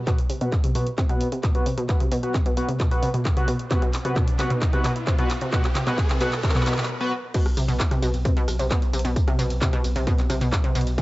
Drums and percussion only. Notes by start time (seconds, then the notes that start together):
0.07 kick, clap, closed hi-hat
0.19 closed hi-hat
0.30 open hi-hat
0.41 closed hi-hat
0.52 kick, clap, closed hi-hat
0.64 closed hi-hat
0.75 open hi-hat
0.87 closed hi-hat
0.98 kick, clap, closed hi-hat
1.09 closed hi-hat
1.21 open hi-hat
1.32 closed hi-hat
1.43 kick, clap, closed hi-hat
1.55 closed hi-hat
1.66 open hi-hat
1.78 closed hi-hat
1.89 kick, clap, closed hi-hat
2.00 closed hi-hat
2.12 open hi-hat
2.23 closed hi-hat
2.34 kick, clap, closed hi-hat
2.46 closed hi-hat
2.57 open hi-hat
2.69 closed hi-hat
2.80 kick, clap, closed hi-hat
2.91 open hi-hat
3.03 open hi-hat
3.14 closed hi-hat
3.25 kick, clap, closed hi-hat
3.37 closed hi-hat
3.48 open hi-hat
3.59 closed hi-hat
3.71 kick, clap, closed hi-hat
3.82 closed hi-hat
3.93 clap, open hi-hat
4.05 closed hi-hat
4.16 kick, clap, closed hi-hat
4.28 closed hi-hat
4.39 clap, open hi-hat
4.50 closed hi-hat
4.62 kick, clap, closed hi-hat
4.73 closed hi-hat
4.84 clap, open hi-hat
4.96 closed hi-hat
5.07 kick, clap, closed hi-hat
5.19 closed hi-hat
5.30 clap, open hi-hat
5.41 closed hi-hat
5.53 kick, clap, closed hi-hat
5.64 clap, closed hi-hat
5.75 clap, open hi-hat
5.87 clap, closed hi-hat
5.98 kick, clap, closed hi-hat
6.10 clap, closed hi-hat
6.21 clap, open hi-hat
6.32 clap, closed hi-hat
6.43 kick, clap, closed hi-hat
6.49 clap
6.55 clap, open hi-hat
6.61 clap
6.66 clap, open hi-hat
6.72 clap
6.78 clap, closed hi-hat
6.83 clap
7.34 kick, closed hi-hat, crash, ride, tambourine
7.46 cross-stick, closed hi-hat, tambourine
7.57 open hi-hat, ride, tambourine
7.69 closed hi-hat, tambourine
7.80 kick, clap, closed hi-hat, ride, tambourine
7.91 cross-stick, closed hi-hat, tambourine
8.03 open hi-hat, ride, tambourine
8.14 closed hi-hat, tambourine
8.25 kick, closed hi-hat, ride, tambourine
8.37 closed hi-hat, tambourine
8.48 cross-stick, open hi-hat, ride, tambourine
8.59 closed hi-hat, tambourine
8.71 kick, clap, closed hi-hat, ride, tambourine
8.82 closed hi-hat, tambourine
8.93 open hi-hat, ride, tambourine
8.99 closed hi-hat
9.05 closed hi-hat, tambourine
9.16 kick, closed hi-hat, ride, tambourine
9.28 cross-stick, closed hi-hat, tambourine
9.39 open hi-hat, ride, tambourine
9.50 closed hi-hat, tambourine
9.62 kick, clap, closed hi-hat, ride, tambourine
9.73 cross-stick, closed hi-hat, tambourine
9.84 open hi-hat, ride, tambourine
9.96 closed hi-hat, tambourine
10.07 kick, closed hi-hat, ride, tambourine
10.19 clap, closed hi-hat, tambourine
10.30 cross-stick, open hi-hat, ride, tambourine
10.41 closed hi-hat, tambourine
10.53 kick, clap, closed hi-hat, ride, tambourine
10.64 closed hi-hat, tambourine
10.75 open hi-hat, ride, tambourine
10.81 closed hi-hat
10.87 closed hi-hat, tambourine
10.98 kick, closed hi-hat, ride, tambourine